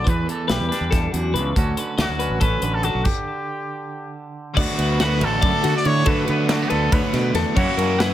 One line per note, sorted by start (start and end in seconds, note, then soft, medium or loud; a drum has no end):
0.00 0.50 A3 medium
0.00 0.12 F#4 medium
0.00 0.10 D5 medium
0.04 0.24 E2 loud
0.04 0.27 B4 medium
0.04 kick medium
0.04 closed hi-hat medium
0.09 0.92 E2 medium
0.09 0.29 B4 medium
0.27 1.54 E3 medium
0.27 0.48 A4 medium
0.27 0.52 A4 medium
0.27 closed hi-hat medium
0.48 0.58 B1 medium
0.48 1.54 G3 medium
0.48 0.98 G4 medium
0.48 0.68 B4 medium
0.48 snare loud
0.48 closed hi-hat medium
0.60 0.69 E2 medium
0.69 1.58 D4 medium
0.69 0.91 B4 medium
0.69 snare soft
0.69 closed hi-hat medium
0.81 1.07 E2 medium
0.91 1.13 G2 medium
0.91 1.12 A4 medium
0.91 kick loud
0.91 snare soft
0.91 closed hi-hat medium
1.12 1.36 E2 medium
1.12 1.35 F#2 medium
1.12 1.34 F#4 medium
1.12 closed hi-hat medium
1.34 1.52 C#2 medium
1.34 1.55 E2 medium
1.34 1.56 B4 medium
1.34 closed hi-hat medium
1.56 3.06 D2 medium
1.56 1.74 D2 medium
1.56 1.77 D3 soft
1.56 1.99 F#3 soft
1.56 2.19 C#4 medium
1.56 3.05 F#4 medium
1.56 1.77 A4 medium
1.56 kick medium
1.56 closed hi-hat medium
1.77 2.62 D3 medium
1.77 1.98 B4 medium
1.77 closed hi-hat medium
1.98 2.07 D2 medium
1.98 2.84 F#3 medium
1.98 2.40 F#4 medium
1.98 2.19 D5 medium
1.98 snare loud
1.98 closed hi-hat medium
2.08 2.27 D2 medium
2.19 2.41 C#4 medium
2.19 2.40 B4 medium
2.19 closed hi-hat medium
2.30 2.57 A1 medium
2.40 3.04 C#4 medium
2.40 2.62 A4 medium
2.40 2.76 B4 medium
2.40 kick loud
2.40 closed hi-hat medium
2.62 2.89 A1 medium
2.62 4.56 D3 medium
2.62 2.84 B4 medium
2.62 closed hi-hat medium
2.74 2.85 A4 loud
2.83 3.07 F#3 medium
2.83 3.06 F#4 medium
2.83 3.06 A4 medium
2.83 closed hi-hat medium
2.95 3.04 B1 medium
3.04 4.13 G4 medium
3.04 kick medium
3.04 crash medium
4.54 4.66 D2 loud
4.54 6.04 D3 medium
4.54 6.06 F#3 loud
4.54 6.05 A3 loud
4.54 6.06 D4 loud
4.54 4.78 D5 loud
4.54 kick medium
4.54 crash loud
4.58 6.07 D2 medium
4.58 4.79 B3 medium
4.58 5.05 F#4 medium
4.78 5.23 D2 medium
4.78 5.43 B3 medium
4.78 4.99 B4 medium
4.78 ride medium
5.00 5.66 F#4 medium
5.00 5.26 B4 loud
5.00 5.21 F#5 medium
5.00 snare loud
5.00 ride loud
5.21 5.38 A1 medium
5.21 6.71 D3 medium
5.21 5.76 A4 loud
5.21 5.41 E5 medium
5.21 ride medium
5.41 5.51 F#2 medium
5.41 6.05 B3 medium
5.41 5.63 D5 medium
5.41 kick loud
5.41 snare soft
5.41 ride loud
5.63 5.73 D3 medium
5.63 5.85 F#4 medium
5.63 6.09 F#4 medium
5.63 snare soft
5.63 ride medium
5.77 5.88 D5 loud
5.85 6.07 A2 medium
5.85 6.03 D3 medium
5.85 6.10 C#5 loud
5.85 6.06 D5 medium
5.85 ride medium
6.05 7.14 D2 medium
6.05 7.54 D3 loud
6.05 6.24 D3 loud
6.05 7.56 F#3 loud
6.05 7.56 A3 loud
6.05 7.56 D4 loud
6.05 6.26 A4 loud
6.05 6.29 B4 loud
6.05 kick loud
6.05 ride loud
6.10 7.59 F#4 medium
6.26 6.63 D3 loud
6.26 6.50 B3 medium
6.26 6.48 B4 medium
6.26 6.53 B4 medium
6.26 ride medium
6.48 6.62 A3 medium
6.48 6.71 F#4 medium
6.48 6.69 D5 medium
6.48 snare loud
6.48 ride loud
6.62 7.58 B3 medium
6.69 6.89 D2 medium
6.69 7.57 D3 medium
6.69 6.94 A4 loud
6.69 6.91 B4 medium
6.69 ride medium
6.91 7.01 D2 loud
6.91 7.40 B4 medium
6.91 7.14 C#5 medium
6.91 kick loud
6.91 ride loud
7.13 7.35 D2 medium
7.13 7.31 B2 medium
7.13 7.35 D5 medium
7.13 snare soft
7.13 ride medium
7.34 7.43 E2 loud
7.34 7.57 E2 medium
7.34 7.57 A4 medium
7.34 snare soft
7.34 ride medium
7.55 8.14 F#2 loud
7.55 7.65 F#2 loud
7.55 8.14 F#2 medium
7.55 8.14 C#3 loud
7.55 8.14 E3 loud
7.55 8.14 F#3 medium
7.55 8.14 A#3 loud
7.55 8.14 A#3 medium
7.55 8.14 C#4 loud
7.55 7.79 C#4 medium
7.55 8.01 F#4 loud
7.55 7.77 C#5 loud
7.55 kick loud
7.55 crash medium
7.59 8.00 E4 medium
7.77 8.14 F#2 medium
7.77 8.14 C#4 medium
7.77 7.99 A#4 medium
7.77 ride medium
7.99 8.14 E4 medium
7.99 8.14 B4 loud
7.99 8.14 F#5 medium
7.99 snare loud
7.99 ride loud